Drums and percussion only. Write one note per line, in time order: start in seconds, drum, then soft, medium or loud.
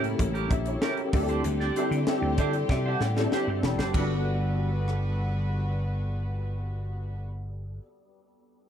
0.04 closed hi-hat medium
0.19 kick medium
0.19 closed hi-hat medium
0.35 closed hi-hat soft
0.51 kick medium
0.51 closed hi-hat medium
0.66 closed hi-hat medium
0.82 snare loud
0.97 closed hi-hat soft
1.13 kick loud
1.13 open hi-hat medium
1.29 closed hi-hat soft
1.44 closed hi-hat medium
1.60 snare soft
1.76 closed hi-hat medium
1.92 closed hi-hat soft
2.07 snare loud
2.38 kick medium
2.38 closed hi-hat medium
2.53 closed hi-hat medium
2.69 kick medium
2.69 snare medium
3.01 snare medium
3.17 snare medium
3.32 snare medium
3.63 snare loud
3.79 snare medium
3.94 kick loud
3.94 crash medium
4.88 cross-stick medium